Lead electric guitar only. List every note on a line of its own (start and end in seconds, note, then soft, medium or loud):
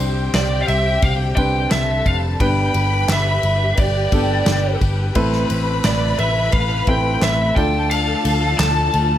0.35 0.62 D5 loud
0.62 0.68 F5 medium
0.69 1.03 E5 medium
1.03 1.13 F5 loud
1.36 1.68 G5 loud
1.71 2.03 E5 loud
2.07 2.16 F5 loud
2.41 3.12 G5 loud
3.12 3.75 E5 loud
3.79 4.78 D5 medium
5.85 6.17 D5 medium
6.19 6.53 E5 medium
6.53 6.85 F5 loud
6.89 7.24 G5 loud
7.23 7.54 E5 loud
7.55 7.91 G5 loud
7.90 8.55 F5 loud
8.58 9.18 A5 loud